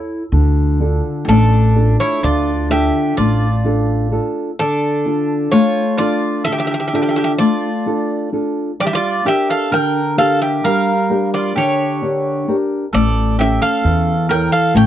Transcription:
Already playing: E4 A4 C#5 E5
0.32 D2 D3
0.80 D4 F4 A4
1.28 A1 A3 D4 A4
1.75 D4 F4 A4
2.00 E4 C#5
2.23 D2 D3 F4 D5
2.70 D4 F4 G4 A4 E5
3.17 A1 A3 F4 D5
3.64 D4 F4 A4
4.11 D4 F4 A4
4.59 D3 D4 A4
5.06 D4 F4 A4
5.52 A3 F4 C#5
5.97 D4 F4 A4 D5
6.44 D3 A4 E5
6.52 G4 E5
6.58 G4 E5
6.64 G4 E5
6.71 G4 E5
6.80 G4 E5
6.87 G4 E5
6.93 D4 F4 G4 A4 E5
7.02 G4 E5
7.09 G4 E5
7.16 G4 E5
7.24 G4 E5
7.38 A3 F4 D5
7.86 D4 F4 A4
8.32 D4 F4 A4
8.80 G3 G4 D5
8.86 G4 E5
8.93 F4 D5
9.25 D4 G4 A#4 E5
9.50 A4 F5
9.71 D3 A#4 G5
10.17 D4 G4 A4 A#4 F5
10.42 G4 E5
10.64 G3 A#4 F5
11.10 D4 G4 A#4
11.34 F4 D5
11.56 D3 G4 C#5
12.02 D4 G4 A#4
12.48 D4 G4 A#4
12.93 A1 A3 A4 D5
13.39 C#4 G4 A4 C#5 E5
13.62 A4 F5
13.84 E2 E3
14.29 E4 A4 A#4 C#5 G5
14.52 A4 F5
14.74 A1 A3 C#5 G5

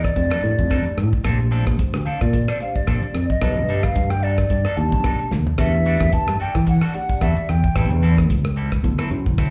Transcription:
Already playing: E2
0.03 D5, kick, cross-stick, closed hi-hat
0.16 F2 A3 D4 G4 C5, muted clean electric guitar stroke, kick, closed hi-hat
0.30 G3 D4 D#4 A4, cross-stick, closed hi-hat
0.43 A2 A3 D4 G4 C5, muted clean electric guitar stroke, closed hi-hat
0.59 F2, kick, closed hi-hat
0.70 G3 D4 D#4 A4, kick, cross-stick, closed hi-hat
0.85 muted fretless electric bass stroke, muted clean electric guitar stroke, closed hi-hat
0.97 A2, muted clean electric guitar stroke, cross-stick, closed hi-hat
1.13 kick, closed hi-hat
1.24 A#1 F3 A3 C4 D4 G4 A4 C5, kick, cross-stick, closed hi-hat
1.39 muted clean electric guitar stroke, closed hi-hat
1.51 F3 C4 D4 A4, closed hi-hat
1.66 A#1, muted clean electric guitar stroke, kick, cross-stick
1.79 kick, closed hi-hat
1.94 D2, muted clean electric guitar stroke, cross-stick
2.05 F3 C4 D4 A4 F5, muted fretless electric bass stroke, closed hi-hat
2.21 A#2 D5, kick, cross-stick
2.33 muted clean electric guitar stroke, kick, closed hi-hat
2.48 F3 C4 D4 A4 D5, cross-stick
2.60 A3 D4 G4 C5 F5, muted clean electric guitar stroke, closed hi-hat
2.75 D5, kick, closed hi-hat
2.87 A#1 F3 C4 D4 A4, kick, cross-stick, closed hi-hat
3.02 muted fretless electric bass stroke, muted clean electric guitar stroke, closed hi-hat
3.14 F2, muted clean electric guitar stroke, cross-stick, closed hi-hat
3.29 D#5, kick, closed hi-hat
3.42 B1 D3 G3 A3 D4 D#4 G4 A4 B4, kick, cross-stick, closed hi-hat
3.57 G2, muted clean electric guitar stroke, closed hi-hat
3.69 G3 D4 D#4 A4, closed hi-hat
3.83 F5, muted clean electric guitar stroke, kick, cross-stick
3.95 G2, kick, closed hi-hat
4.10 G5, muted clean electric guitar stroke, cross-stick, closed hi-hat
4.23 G3 D4 D#4 A4 D5, closed hi-hat
4.38 muted clean electric guitar stroke, kick, cross-stick, closed hi-hat
4.50 G2, muted clean electric guitar stroke, kick, closed hi-hat
4.65 G3 D4 D#4 A4, cross-stick, closed hi-hat
4.77 D#2 A3 D4 G4 D5 A5, muted clean electric guitar stroke, closed hi-hat
4.92 B1, kick, closed hi-hat
5.04 G3 D4 D#4 A4, kick, cross-stick, closed hi-hat
5.20 muted fretless electric bass stroke, muted clean electric guitar stroke, closed hi-hat
5.31 D#2, muted clean electric guitar stroke, snare
5.47 floor tom
5.58 E2 G3 A3 D4 F#4 G4 A4 B4 E5, kick, cross-stick, closed hi-hat
5.74 muted clean electric guitar stroke, closed hi-hat
5.86 G3 D4 F#4 A4, closed hi-hat
6.00 E2, muted clean electric guitar stroke, kick, cross-stick
6.12 A5, kick, closed hi-hat
6.28 G2, muted clean electric guitar stroke, cross-stick
6.40 G3 D4 F#4 A4 G5, muted fretless electric bass stroke, closed hi-hat
6.55 E3, muted clean electric guitar stroke, kick, cross-stick
6.67 F#5, muted clean electric guitar stroke, kick, closed hi-hat
6.81 G3 D4 F#4 A4, cross-stick
6.94 A3 D4 G4 D5 F#5, muted clean electric guitar stroke, closed hi-hat
7.09 kick, closed hi-hat
7.21 E2 G3 D4 F#4 A4 E5, kick, cross-stick, closed hi-hat
7.37 muted clean electric guitar stroke, muted fretless electric bass stroke, closed hi-hat
7.49 E2 G5, muted clean electric guitar stroke, cross-stick, closed hi-hat
7.64 kick, closed hi-hat
7.75 A1 G3 A3 C4 D4 E4 G4 A4 B4, kick, cross-stick, closed hi-hat
7.91 E2, muted clean electric guitar stroke, closed hi-hat
8.02 G3 C4 E4 A4, closed hi-hat
8.17 muted clean electric guitar stroke, kick, cross-stick
8.30 C#2, kick, closed hi-hat
8.44 muted clean electric guitar stroke, cross-stick, closed hi-hat
8.56 G3 C4 E4 A4, closed hi-hat
8.72 kick, cross-stick, closed hi-hat
8.83 D2 F#3 B3 E4 A4, muted clean electric guitar stroke, kick, closed hi-hat
8.98 F#3 C4 E4 A4, cross-stick, closed hi-hat
9.10 F#2 B2 F#3 E4 C5, muted clean electric guitar stroke, closed hi-hat
9.26 D2, kick, closed hi-hat
9.38 F#3 C4 E4 A4, kick, cross-stick, closed hi-hat

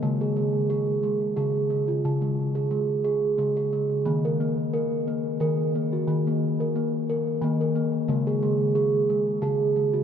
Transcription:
0.03 C#3 G#3
0.21 G#4
0.36 G#3
0.70 G#4
1.03 G#3
1.36 C#3 G#4
1.70 G#3
1.88 F4
2.05 C#3
2.22 G#3
2.55 G#4
2.71 G#3
3.04 G#4
3.38 C#3 G#3
3.57 G#4
3.73 G#3
4.05 D#3 A#3
4.25 A#4
4.40 A#3
4.74 A#4
5.07 A#3
5.40 D#3 A#4
5.75 A#3
5.93 F#4
6.08 D#3
6.27 A#3
6.60 A#4
6.76 A#3
7.10 A#4
7.42 D#3 A#3
7.61 A#4
7.76 A#3
8.08 C#3 G#3
8.27 G#4
8.43 G#3
8.75 G#4
9.10 G#3
9.42 C#3 G#4
9.76 G#3
9.94 F#4

